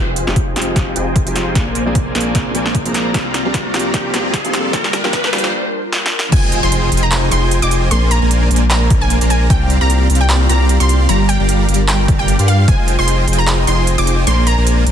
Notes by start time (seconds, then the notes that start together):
Already playing: F1 F3 C4 D#4 F4 G#4 C5 D#5 G5 G#5, riser
0.16 closed hi-hat
0.26 F1 F3 G#3 C4 D#4 F4 G4 C5 D#5 G5 G#5, snare
0.36 kick, closed hi-hat
0.55 F1 F3 G#3 C4 D#4 F4 G4 C5 D#5 G5 G#5, snare, closed hi-hat
0.62 closed hi-hat
0.75 F3 G#3 C4 D#4 G4, kick, snare, closed hi-hat
0.95 F1 F3 G#3 C4 D#4 F4 G4 C5 D#5 G5 G#5, closed hi-hat
1.16 kick, closed hi-hat
1.26 F1 F3 G#3 C4 D#4 F4 G4 C5 D#5 G5 G#5, closed hi-hat
1.36 snare, closed hi-hat
1.54 A#1 F3 G#3 A#3 C4 D4 G#4 A#4 C5 D5 G#5, kick, snare, closed hi-hat
1.75 closed hi-hat
1.85 A#1 F3 A#3 C4 D4 G#4 A#4 C5 D5 G#5
1.95 kick, closed hi-hat
2.14 A#1 F3 A#3 C4 D4 G#4 A#4 C5 D5 G#5, snare, closed hi-hat
2.21 closed hi-hat
2.34 F3 A#3 C4 D4 G#4, kick, snare, closed hi-hat
2.54 A#1 F3 A#3 C4 D4 G#4 A#4 C5 D5 G#5, closed hi-hat
2.66 snare
2.75 kick, closed hi-hat
2.85 A#1 F3 A#3 C4 D4 G#4 A#4 C5 D5 A#5, closed hi-hat
2.94 snare, closed hi-hat
3.13 C2 C3 F3 G3 A#3 C4 F4 G4 D5 F5 A#5, kick, snare, closed hi-hat
3.34 snare, closed hi-hat
3.44 C2 F3 A#3 C4 D4 G4 D5 F5 A#5
3.54 kick, snare, closed hi-hat
3.73 C2 F3 A#3 C4 D4 G4 D5 F5 A#5, snare, closed hi-hat
3.79 closed hi-hat
3.93 F3 A#3 C4 D4 G4, kick, snare, closed hi-hat
4.13 C2 F3 A#3 C4 D4 G4 D5 F5 A#5, snare, closed hi-hat
4.34 kick, snare, closed hi-hat
4.44 C2 F3 A#3 C4 D4 G4 D5 F5 C6, closed hi-hat
4.54 snare, closed hi-hat
4.72 G1 F3 G3 A#3 D4 F4 G4 A#4 D5 F5 A#5, kick, snare, closed hi-hat
4.84 snare
4.93 snare, closed hi-hat
5.03 G1 F3 G3 A#3 D4 G4 D5 F5 A#5, snare
5.13 kick, snare, closed hi-hat
5.24 snare
5.32 G1 F3 G3 A#3 D4 G4 D5 F5 A#5, snare, closed hi-hat
5.38 closed hi-hat
5.44 snare
5.93 snare
6.06 snare
6.19 snare
6.32 F1 F3 C4 D#4 F4 G#4 C5 D#5 G5 G#5, kick, closed hi-hat, crash, impact
6.52 closed hi-hat
6.63 F1 F4 C5 D#5 G5 G#5 C6
6.72 closed hi-hat
6.92 F1 F4 C5 D#5 G5 G#5, closed hi-hat
6.97 closed hi-hat
7.03 A#5
7.12 clap, closed hi-hat
7.32 F1 F4 C5 D#5 G5 G#5 C6, closed hi-hat
7.51 closed hi-hat
7.62 F1 F4 C5 D#5 G5 G#5 D6, closed hi-hat
7.71 closed hi-hat
7.91 A#1 G#3 A#3 D4 A#4 C5 D5 G#5 C6, closed hi-hat
8.11 A#5, closed hi-hat
8.22 A#1 A#3 A#4 C5 D5 G#5
8.31 closed hi-hat
8.51 A#1 A#3 A#4 C5 D5 G#5, closed hi-hat
8.56 closed hi-hat
8.71 A#5, clap, closed hi-hat
8.90 A#1 A#3 A#4 C5 D5 G#5, kick, closed hi-hat
9.01 G#5
9.10 closed hi-hat
9.21 A#1 A#3 A#4 C5 D5 A#5, closed hi-hat
9.30 G#5, closed hi-hat
9.50 C2 C3 G3 C4 F4 G4 D5 F5 G5 A#5, kick, closed hi-hat
9.70 closed hi-hat
9.81 C2 C4 G4 D5 F5 A#5
9.90 closed hi-hat
10.10 C2 C4 G4 D5 F5 A#5, closed hi-hat
10.15 closed hi-hat
10.21 G5
10.30 clap, closed hi-hat
10.49 C2 C4 G4 D5 F5 A#5, closed hi-hat
10.69 closed hi-hat
10.80 C2 C4 G4 D5 F5 C6, closed hi-hat
10.89 closed hi-hat
11.09 G1 G3 D4 G4 A#4 D5 F5 A#5, closed hi-hat
11.29 G5, closed hi-hat
11.40 G1 G3 G4 D5 F5 A#5
11.49 closed hi-hat
11.69 G1 G3 G4 D5 F5 A#5, closed hi-hat
11.74 closed hi-hat
11.88 G5, clap, closed hi-hat
12.08 G1 G3 G4 D5 F5 A#5, kick, closed hi-hat
12.19 G5
12.28 closed hi-hat
12.39 G2 G3 G4 D5 F5 C6, closed hi-hat
12.48 F5, closed hi-hat
12.68 F1 F3 C4 D#4 F4 G#4 C5 D#5 G5 G#5, kick, closed hi-hat
12.88 closed hi-hat
12.99 F1 F4 C5 D#5 G5 G#5 C6
13.08 closed hi-hat
13.28 F1 F4 C5 D#5 G5 G#5, closed hi-hat
13.33 closed hi-hat
13.38 A#5
13.47 clap, closed hi-hat
13.67 F1 F4 C5 D#5 G5 G#5 C6, closed hi-hat
13.87 closed hi-hat
13.98 F1 F4 C5 D#5 G5 G#5 D6, closed hi-hat
14.07 closed hi-hat
14.27 A#1 G#3 A#3 D4 A#4 C5 D5 G#5 C6, closed hi-hat
14.47 A#5, closed hi-hat
14.58 A#1 A#3 A#4 C5 D5 G#5
14.67 closed hi-hat
14.87 A#1 A#3 A#4 C5 D5 G#5, closed hi-hat